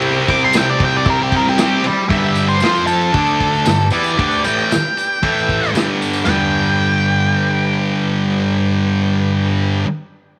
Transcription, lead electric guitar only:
\new Staff \with { instrumentName = "Lead electric guitar" } { \time 4/4 \key g \mixolydian \tempo 4 = 115 << { r8 d'''16 c'''16 g''16 d''16 g''16 d''16 bes'16 g'16 bes'16 g'16 g'4 | r1 | r1 | r1 |
r1 | } \\ { r2. r8 d''8 | e''8. c''8. a'2 d''8~ | d''8 g''2~ g''8 r4 | g''1~ |
g''1 | } >> }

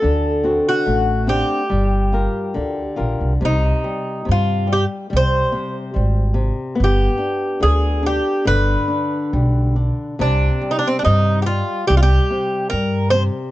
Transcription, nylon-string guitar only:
\new Staff \with { instrumentName = "Nylon-string guitar" } { \clef bass \time 2/4 \key g \minor \tempo 4 = 71 d8 <c' d' fis'>8 a8 <c' d' fis''>8 | g8 <f' g' bes'>8 d8 <f' g' bes'>8 | \key c \minor c8 g8 c8 g8 | g8 c8 g8 c8 |
b8 d'8 d8 d'8 | d8 d'8 g8 d'8 | c8 g8 c8 g8 | g8 c8 g8 c8 | }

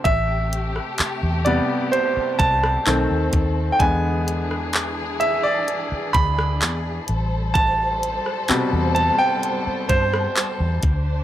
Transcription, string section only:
\new Staff \with { instrumentName = "String section" } { \time 4/4 \key a \minor \tempo 4 = 64 <c a g'>2. <dis c' a'>4 | <e d' gis'>2.~ <e d' gis'>8 <g a' c''>8~ | <g a' c''>2.~ <g a' c''>8 <d d' c''>8 | }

